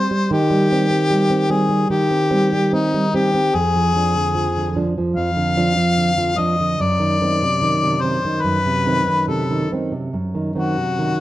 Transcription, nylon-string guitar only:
Already playing: C4
0.11 G3
0.31 D#3
0.51 G3
0.72 G3 C4
0.90 C4
1.10 G3
1.30 C4
1.50 G3 C4
1.70 G3
1.90 D#3
2.11 C4
2.30 G3 C4
2.52 G3
2.73 C4
2.94 G3
3.14 G3 C4
3.35 C4
3.54 F2
3.75 F3
3.96 F3 D4
4.15 D3
4.35 F3
4.57 D3
4.76 F3 D4
4.98 F3
5.16 F2
5.36 D3
5.57 F3 D4
5.77 F3
5.97 D3
6.18 F3
6.38 F3 D4
6.60 D3
6.80 F#2
6.99 D#3
7.22 D#3 C4
7.42 C3
7.62 D#3
7.83 C3
8.02 D#3 C4
8.25 D#3
8.44 F#2
8.66 C3
8.86 D#3 C4
9.07 D#3
9.28 C3
9.50 D#3
9.72 D#3 C4
9.92 C3
10.13 F#2
10.35 D#3
10.56 D#3 C4
10.78 C3
10.99 D#3

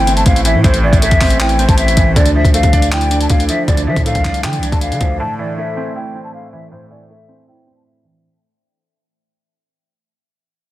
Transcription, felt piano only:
Already playing: A2 E3 A3 C4 E4
0.07 C4
0.45 E3
0.64 A2
0.83 E3
1.02 A3
1.21 C4
1.40 E4
1.59 C4
1.97 E3
2.16 D3
2.35 F3
2.54 A3
2.73 D4
2.92 E4
3.11 D4
3.49 F3
3.68 D3
3.87 F3
4.06 A3
4.25 D4
4.44 E3
4.63 D4
5.01 F3
5.20 A2
5.39 E3
5.58 A3
5.77 C4
5.96 E4
6.15 C4
6.53 E3
6.72 A2
6.91 E3
7.10 A3
7.29 C4
7.48 E4
7.67 C4
8.05 E3

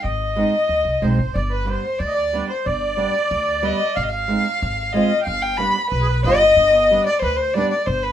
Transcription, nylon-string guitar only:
0.36 G#3 C4 D#4
1.02 G#3 C4 D#4
1.65 G3 B3 D4
2.33 G3 B3 D4
2.97 G3 B3 D4
3.63 G3 B3 D4
4.28 G#3 C4 D#4
4.94 G#3 C4 F4
5.58 G3 B3 D4
6.25 G3 B3 F4
6.91 G3 B3 D4
7.55 G3 B3 D4

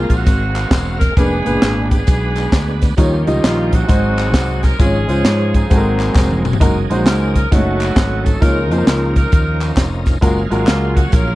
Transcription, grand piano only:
Already playing: A#3 F4 G#4 A#4
1.17 A#3 D4 G#4 B4
1.45 A#2 D4 G#4 B4
2.97 D#3 G3 D#4 F4 C#5
3.27 G3 D#4 F4 D#5
3.88 G#2 G#3 D#4 F#4 C5
4.79 G#2 G#3 C#4 F4 C#5
5.08 G#3 C#4 F4 C5
5.70 G#2 G#3 C4 F#4 A4
5.77 A#4
6.60 G#3 D#4 F#4 A#4
6.90 G#3 D#4 F#4 C5
7.51 G#3 D#4 F#4 C#5
7.57 A3
8.41 C#3 A#3 D#4 F4 C#5
8.70 A#3 D#4 F4 G#4
8.78 A#4
10.21 G#3 F4 F#4 A#4
10.50 G#3 F4 F#4 A#4

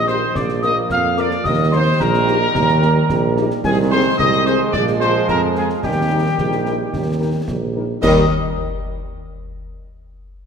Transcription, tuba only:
Already playing: A#1
0.35 A#1
0.91 F2
1.45 D#2
2.00 A#1
2.55 D#2
3.10 A#1
3.64 C2
4.19 C2
4.74 A#1
5.28 F2
5.84 D#2
6.38 A#1
6.93 D#2
7.48 A#1
8.03 D#2

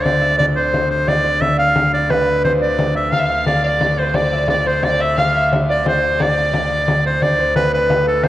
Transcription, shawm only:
0.05 D5
0.38 D5
0.56 C5
0.90 C5
1.08 D5
1.41 E5
1.59 F5
1.94 D5
2.11 B4
2.44 C5
2.62 D5
2.96 E5
3.13 F5
3.47 D5
3.65 D5
3.98 C5
4.15 D5
4.49 D5
4.67 C5
4.84 D5
5.01 E5
5.18 F5
5.70 D5
5.88 C5
6.22 D5
7.06 C5
7.23 D5
7.56 B4
7.74 B4
8.08 A4
8.24 C5

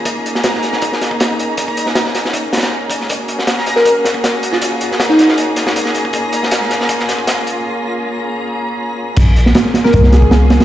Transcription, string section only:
Already playing: A#3 C#4 G#4
0.06 D#4
3.09 A#3 F#4 G#4
6.14 F4
9.17 A#3 C#4 F4 G#4

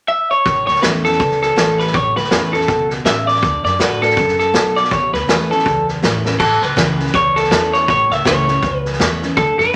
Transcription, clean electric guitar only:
0.08 E5
0.31 C#5
0.67 C#5
0.82 B4
1.05 A4
1.43 A4
1.80 B4
1.95 C#5
2.17 B4
2.53 A4
3.06 E5
3.27 D5
3.65 D5
3.80 B4
4.02 A4
4.39 A4
4.76 D5
4.92 C#5
5.14 B4
5.51 A4
6.40 A4
6.63 B4
7.15 C#5
7.36 A4
7.73 C#5
7.90 C#5
8.12 E5
8.27 C#5
8.78 B4
9.37 A4
9.59 B4

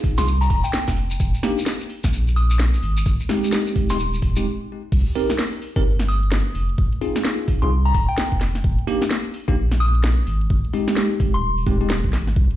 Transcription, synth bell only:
0.18 C6
0.41 A#5
0.50 A#5
0.64 G5
2.36 D#6
3.90 C6
6.09 D#6
7.62 C6
7.85 A#5
7.94 A#5
8.09 G5
9.80 D#6
11.34 C6

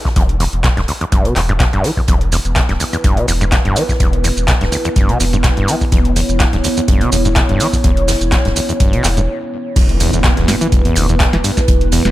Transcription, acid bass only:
0.05 E2
0.16 E2
0.40 E2
0.64 B2
0.77 G2
0.88 D2
1.01 E2
1.12 G2
1.25 B2
1.36 E2
1.49 G2
1.60 B2
1.73 G2
1.84 E3
1.97 E2
2.08 E2
2.32 E2
2.56 B2
2.69 G2
2.80 D2
2.93 E2
3.04 G2
3.17 B2
3.28 E2
3.41 G2
3.52 B2
3.65 G2
3.76 E3
3.89 E2
4.00 E2
4.24 E2
4.48 B2
4.61 G2
4.72 D2
4.85 E2
4.96 G2
5.09 B2
5.20 E2
5.33 G2
5.44 B2
5.57 G2
5.68 E3
5.81 E2
5.92 E2
6.16 E2
6.40 B2
6.53 G2
6.64 D2
6.77 E2
6.88 G2
7.01 B2
7.12 E2
7.25 G2
7.36 B2
7.49 G2
7.60 E3
7.73 E2
7.84 E2
8.08 E2
8.32 B2
8.45 G2
8.56 D2
8.69 E2
8.80 G2
8.93 B2
9.04 E2
9.17 G2
10.00 E2
10.13 E2
10.24 E2
10.37 E2
10.48 G2
10.61 E3
10.72 E1
10.85 E2
10.96 D2
11.09 E2
11.20 E2
11.33 E3
11.44 G2
11.57 E2
11.92 E2
12.05 E2

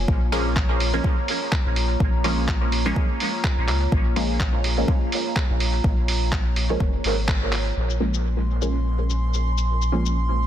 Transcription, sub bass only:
0.08 A#1
1.66 A#1
2.00 A#1
3.58 A#1
3.68 C#2
3.92 A#1
5.50 A#1
5.84 A#1
6.80 F1
7.04 G#1
7.76 A#1

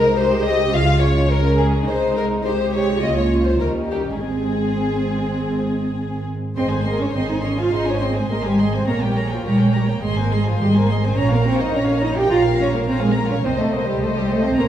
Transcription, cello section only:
Already playing: D#4
0.16 G4
0.73 F4
1.31 C#4
1.88 D#4
2.45 G4
3.02 F4
3.60 D#4
4.19 C4
6.57 C4
6.72 G#3
6.85 A#3
7.00 C#4
7.15 C4
7.30 D#4
7.44 C#4
7.59 F4
7.73 D#4
7.88 C#4
8.03 C4
8.18 G#3
8.32 A#3
8.45 G3
8.60 G#3
8.75 C4
8.88 A#3
9.04 G3
9.17 G#3
9.33 F3
9.46 G3
9.62 G#3
9.76 G3
9.90 A#3
10.04 G#3
10.18 A#3
10.33 G#3
10.47 F3
10.61 G3
10.75 A#3
10.90 G#3
11.04 C4
11.18 C#4
11.32 A#3
11.46 C4
11.61 D#4
11.75 C#4
12.03 D#4
12.17 G4
12.31 F4
12.59 C#4
12.74 A#3
12.87 C4
13.01 G#3
13.16 A#3
13.30 C#4
13.44 C4
13.58 A3
13.72 A#3
13.86 G3
14.00 A3
14.15 G3
14.29 A3
14.44 C4
14.58 A#3

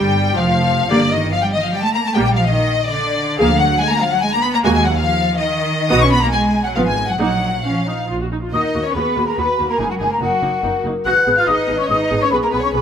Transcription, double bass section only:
Already playing: G1
0.38 F1
0.90 G1
2.15 A#1
3.40 D2
4.64 D#2
5.91 B1
6.75 G#1
7.20 A#1
8.09 A#1
8.53 D#2
8.74 D#2
8.95 D#2
9.17 D#2
9.38 D#2
9.59 D#2
9.80 F#1
10.01 F#1
10.21 F#1
10.43 F#1
10.64 F#1
10.84 F#1
11.05 G#1
11.26 G#1
11.48 G#1
11.69 G#1
11.90 G#1
12.11 G#1
12.32 B1
12.53 B1
12.73 B1

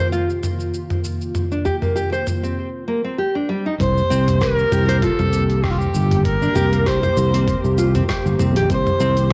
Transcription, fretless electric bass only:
3.80 C2
4.11 C2
4.72 C2
5.19 C2
5.94 G1
6.55 C2
7.17 C2
7.64 C2
8.25 G1
8.39 C2
8.56 A#1
8.70 C2
9.00 C2

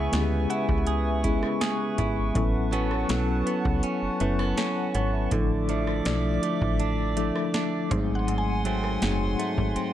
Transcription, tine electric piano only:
Already playing: G#3 B3 C#4 E4 G#4
0.12 G#3 B3 C#4 E4 G4
0.21 G#4
1.23 G#3 B3 C#4 E4 G#4
2.34 F#3 B3 C#4 E4 A4
3.08 F#3 B3 C#4 E4 A4
4.20 F#3 B3 C#4 E4 B4
4.58 A4
4.76 B4
4.95 C#5
5.13 E5
5.31 F3 A3 D4 E4 A4
6.05 F3 A3 D4 E4 A4
7.16 F3 A3 D4 E4 A4
7.90 F#3 A3 C4 D#4 G#4
9.01 F#3 A3 C4 D#4 G#4

